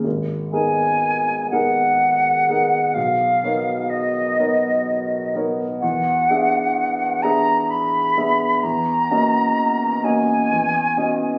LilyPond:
<<
  \new Staff \with { instrumentName = "Flute" } { \time 3/4 \key aes \dorian \tempo 4 = 63 r8 aes''4 ges''4. | f''4 dis''4. r8 | fis''4. bes''8 b''4 | bes''4. aes''4. | }
  \new Staff \with { instrumentName = "Grand piano" } { \time 3/4 \key aes \dorian aes,,8 <ces' ees' aes' bes'>4 <ces' ees' aes' bes'>4 <ces' ees' aes' bes'>8 | b,,8 <b dis' ais' cis''>4 <b dis' ais' cis''>4 <b dis' ais' cis''>8 | e,8 <b d' gis' e''>4 <b d' gis' e''>4 <b d' gis' e''>8 | fes,8 <bes des' ges' ees''>4 <bes des' ges' ees''>8 fes,8 <ces' des' ges' ees''>8 | }
>>